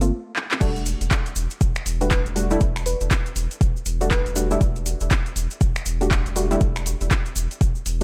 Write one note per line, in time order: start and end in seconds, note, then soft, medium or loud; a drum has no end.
0.00 0.11 G1 medium
0.00 0.11 A3 medium
0.00 0.11 A#3 medium
0.00 0.11 C4 medium
0.00 0.11 F4 medium
0.00 closed hi-hat medium
0.00 shaker soft
0.36 clap medium
0.51 clap loud
0.60 0.94 E1 loud
0.60 1.36 G3 loud
0.60 1.36 A3 medium
0.60 1.36 D4 medium
0.60 1.36 F#4 loud
0.60 kick loud
0.60 closed hi-hat medium
0.60 crash loud
0.60 shaker medium
0.76 closed hi-hat soft
0.76 shaker soft
0.86 open hi-hat loud
0.86 shaker loud
1.01 1.08 E1 medium
1.01 closed hi-hat medium
1.01 shaker soft
1.11 kick loud
1.11 clap loud
1.11 closed hi-hat medium
1.11 shaker medium
1.26 closed hi-hat soft
1.26 shaker soft
1.36 1.47 E1 loud
1.36 open hi-hat medium
1.36 shaker medium
1.50 closed hi-hat medium
1.50 shaker soft
1.61 1.72 E1 medium
1.61 kick loud
1.61 closed hi-hat medium
1.61 shaker medium
1.75 finger snap medium
1.75 shaker soft
1.86 2.19 E1 medium
1.86 open hi-hat loud
1.86 shaker medium
2.01 2.33 G3 medium
2.01 2.34 A3 medium
2.01 2.34 D4 medium
2.01 2.34 F#4 medium
2.01 2.08 B4 medium
2.01 closed hi-hat medium
2.01 shaker soft
2.10 kick loud
2.10 clap loud
2.10 closed hi-hat medium
2.10 shaker medium
2.26 2.57 E1 medium
2.26 closed hi-hat soft
2.26 shaker soft
2.36 2.47 G3 medium
2.36 2.47 A3 medium
2.36 2.48 D4 medium
2.36 2.48 F#4 loud
2.36 open hi-hat loud
2.36 shaker medium
2.50 2.65 G3 loud
2.50 2.65 A3 medium
2.50 2.65 D4 medium
2.50 2.65 E4 loud
2.50 closed hi-hat medium
2.50 shaker soft
2.61 2.94 E1 loud
2.61 kick loud
2.61 closed hi-hat medium
2.61 shaker medium
2.76 finger snap medium
2.76 closed hi-hat soft
2.76 shaker soft
2.86 3.03 B4 medium
2.86 open hi-hat loud
2.86 shaker loud
3.01 3.08 E1 medium
3.01 closed hi-hat medium
3.01 shaker soft
3.11 kick loud
3.11 clap loud
3.11 closed hi-hat medium
3.11 shaker medium
3.26 closed hi-hat soft
3.26 shaker soft
3.36 3.47 E1 loud
3.36 open hi-hat medium
3.36 shaker medium
3.51 closed hi-hat medium
3.51 shaker soft
3.61 3.72 E1 medium
3.61 kick loud
3.61 closed hi-hat medium
3.61 shaker medium
3.77 shaker soft
3.86 4.19 E1 medium
3.86 open hi-hat loud
3.86 shaker medium
4.01 4.33 G3 medium
4.01 4.34 A3 medium
4.01 4.34 D4 medium
4.01 4.34 F#4 medium
4.01 closed hi-hat medium
4.01 shaker soft
4.11 4.51 B4 medium
4.11 kick loud
4.11 clap loud
4.11 closed hi-hat medium
4.11 shaker medium
4.26 4.57 E1 medium
4.26 closed hi-hat soft
4.26 shaker soft
4.36 4.47 G3 medium
4.36 4.47 A3 medium
4.36 4.48 D4 medium
4.36 4.48 F#4 loud
4.36 open hi-hat loud
4.36 shaker medium
4.51 4.65 G3 loud
4.51 4.65 A3 medium
4.51 4.65 D4 medium
4.51 4.65 E4 loud
4.51 closed hi-hat medium
4.51 shaker soft
4.61 4.94 E1 loud
4.61 kick loud
4.61 closed hi-hat medium
4.61 shaker medium
4.76 closed hi-hat soft
4.76 shaker soft
4.86 open hi-hat loud
4.86 shaker loud
5.00 5.08 E1 medium
5.00 closed hi-hat soft
5.00 shaker soft
5.11 kick loud
5.11 clap loud
5.11 closed hi-hat medium
5.11 shaker medium
5.26 closed hi-hat soft
5.26 shaker soft
5.36 5.47 E1 loud
5.36 open hi-hat loud
5.36 shaker loud
5.51 closed hi-hat medium
5.51 shaker soft
5.61 5.72 E1 medium
5.61 kick loud
5.61 closed hi-hat medium
5.61 shaker medium
5.76 finger snap medium
5.76 shaker soft
5.86 6.19 E1 medium
5.86 open hi-hat loud
5.86 shaker medium
6.01 6.34 G3 medium
6.01 6.34 A3 medium
6.01 6.34 D4 medium
6.01 6.34 F#4 medium
6.01 closed hi-hat medium
6.01 shaker soft
6.11 kick loud
6.11 clap loud
6.11 closed hi-hat medium
6.11 shaker medium
6.26 6.57 E1 medium
6.26 closed hi-hat soft
6.26 shaker soft
6.36 6.47 G3 medium
6.36 6.48 A3 medium
6.36 6.48 D4 medium
6.36 6.48 F#4 medium
6.36 open hi-hat loud
6.36 shaker loud
6.51 6.65 G3 loud
6.51 6.65 A3 medium
6.51 6.65 D4 medium
6.51 6.66 E4 loud
6.51 closed hi-hat medium
6.51 shaker soft
6.61 6.94 E1 loud
6.61 kick loud
6.61 closed hi-hat medium
6.61 shaker soft
6.76 finger snap medium
6.76 closed hi-hat soft
6.76 shaker soft
6.86 open hi-hat loud
6.86 shaker loud
7.01 7.08 E1 medium
7.01 closed hi-hat soft
7.01 shaker soft
7.11 kick loud
7.11 clap loud
7.11 closed hi-hat medium
7.11 shaker medium
7.26 closed hi-hat soft
7.26 shaker soft
7.36 7.47 E1 loud
7.36 open hi-hat medium
7.36 shaker loud
7.51 closed hi-hat soft
7.51 shaker soft
7.61 7.72 E1 medium
7.61 kick loud
7.61 closed hi-hat medium
7.61 shaker medium
7.75 shaker soft
7.86 8.04 E1 medium
7.86 open hi-hat loud
7.86 shaker loud